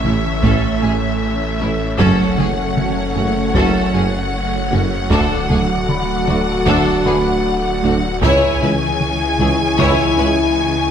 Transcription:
Already playing: A1 E3 A3 C#4 C#5 E5 B5
0.04 A1 A2 C#4 E4, taiko mid
0.42 A1 A2 A3 C#4 A4, taiko
0.82 A1 A2 A3 C#4 G#4 G#5
1.60 A1 A2 C#4 E4 A4
1.98 F#1 F#2 F#3 C#4 A4 C#5 F#5, taiko
2.37 F#1 F#2 A3 C#4 G#4, taiko mid
2.77 taiko mid
3.15 F#1 F#2 A3 C#4 F#4, taiko mid
3.55 F#1 F#2 F#3 C#4 F#4 A4 A6, taiko
3.94 F#1 F#2 C#4 F#4 G#4
4.71 F#1 F#2 C#4 F#4
5.10 D1 D2 D3 A3 D4 F#4 A4 D5, taiko
5.49 D2 F#3 D4 G#4, taiko mid
5.89 B5, taiko mid
6.27 D2 F#3 D4 F#4, taiko mid
6.66 D2 D3 D4 A4, taiko
7.05 D2 D4 G#4 B4 B5
7.83 D2 D4 F#4
8.22 C#2 C#3 E3 G#3 C#4 E4 G#4 C#5 G#5, taiko
8.61 C#2 E3 E4 B4, taiko mid
9.01 taiko mid
9.39 C#2 E3 E4 G#4, taiko mid
9.78 C#2 C#3 E4 C#5 C#6, taiko
10.17 C#2 C#4 E4 B4

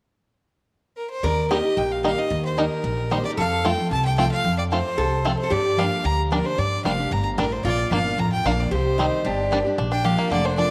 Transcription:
0.97 A#4
1.10 C5
1.23 D#2 D#3 A#4 D5
1.50 D#3 G3 A#3 D#4 G4 D#5
1.63 D#4 G4
1.77 A#1 A#2 G5
1.92 F5
2.03 D#3 G3 A#3 D#4 G4 F5
2.17 D#4 G4 D#5
2.30 D#2 D#3
2.45 C5
2.57 D#3 G3 A#3 D#4 G4 A#4
2.84 A#1 A#2
3.10 D#3 G3 A#3 D#4 G4 C5
3.24 D#4 G4 D5
3.30 A#4
3.37 F2 A4 F5
3.64 F3 A3 C4 F4 G5
3.78 C4 F4
3.91 C2 C3 A5
4.05 G5
4.18 F3 A3 C4 F4 G5
4.31 F5
4.44 F2
4.58 D5
4.70 F3 A3 C4 F4 C5
4.98 C2 C3 A4
5.25 F2 A3 C4 F4 A4
5.39 C5
5.43 A4
5.50 G2 G4 D5
5.77 F3 G3 A#3 D4 G4 F5
6.04 D2 D3 A#5
6.31 F3 G3 A#3 D4 G4 A#4
6.44 D4 G4 C5
6.58 G2 D5
6.84 F1 F3 G3 A#3 D4 G4 F5
6.98 D4 G4
7.11 G1 G2 A#5
7.38 A1 A2 G3 D4 A#4
7.52 C5
7.64 A#1 A#2 F4 D5
7.91 G1 F3 A#3 D4 F4 F5
8.04 D4 F4
8.18 A1 F2 A#5
8.32 G5
8.44 A#1 F3 A#3 D4 F4 F5
8.59 D5
8.71 C2 C3 G4 C5
8.98 D#3 G3 C4 D#4 G4
9.25 G1 G2 D4 G4
9.51 G3 A#3 D4 G4
9.65 D4 G4
9.78 A#1 A#2 D4
9.92 D4 G5
10.04 F3 A#3 D4 F4 G4 F5
10.19 A#3
10.31 F1 F2 D3 D5
10.45 D4 C5
10.57 F3 A#3 D4 F4 D5

